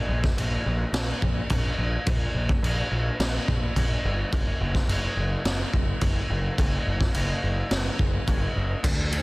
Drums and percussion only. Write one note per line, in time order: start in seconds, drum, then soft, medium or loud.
0.24 kick medium
0.24 snare soft
0.38 crash medium
0.94 snare loud
0.94 crash medium
1.22 kick medium
1.50 kick medium
1.50 crash medium
2.07 kick loud
2.07 crash medium
2.49 kick medium
2.64 crash medium
3.20 snare loud
3.20 crash medium
3.48 kick medium
3.76 kick medium
3.76 crash medium
4.33 kick loud
4.33 crash medium
4.75 kick medium
4.75 snare soft
4.89 crash medium
5.45 snare loud
5.45 crash medium
5.73 kick medium
6.01 kick medium
6.01 crash medium
6.58 kick loud
6.58 crash medium
7.01 kick medium
7.01 snare soft
7.14 crash medium
7.71 snare loud
7.71 crash medium
7.99 kick medium
8.27 kick medium
8.27 crash medium
8.84 kick loud
8.84 crash medium
9.12 ride medium